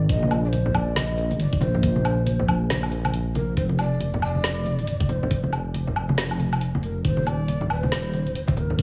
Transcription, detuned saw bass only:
0.09 0.73 A#1 loud
0.75 1.60 A#1 loud
1.61 2.47 A#1 loud
2.48 3.12 A#1 loud
3.14 3.56 A#1 loud
3.57 4.21 F1 loud
4.22 5.08 F1 loud
5.09 5.95 F1 loud
5.96 6.82 F1 loud
6.83 7.03 F1 loud
7.05 7.69 D#1 loud
7.70 8.56 D#1 loud
8.57 8.82 D#1 medium

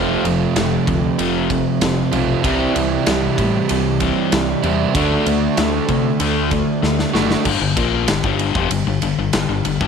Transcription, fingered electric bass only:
0.00 0.14 F1 medium
0.24 0.45 F1 medium
0.56 0.76 F1 medium
0.87 1.08 D2 medium
1.18 1.59 F1 medium
1.81 2.02 F1 medium
2.12 2.33 B1 medium
2.44 2.65 C2 medium
2.76 2.96 C2 medium
3.07 3.27 C2 medium
3.38 3.59 A2 medium
3.70 4.11 C2 medium
4.32 4.53 C2 medium
4.63 4.84 E2 medium
4.95 5.15 D2 medium
5.26 5.47 D2 medium
5.58 5.78 D2 medium
5.89 6.10 C3 medium
6.20 6.61 D2 loud
6.83 7.03 D2 medium
7.14 7.35 F#1 medium
7.46 7.60 G1 medium
7.61 7.76 G1 medium
7.77 8.06 A#1 loud
8.08 8.23 G1 medium
8.24 8.53 G1 medium
8.55 8.70 F1 medium
8.71 8.86 G1 medium
8.87 9.02 G1 medium
9.02 9.17 G1 medium
9.18 9.33 G1 medium
9.33 9.48 G1 medium
9.49 9.64 G1 medium
9.65 9.80 G1 medium
9.81 9.87 G1 medium

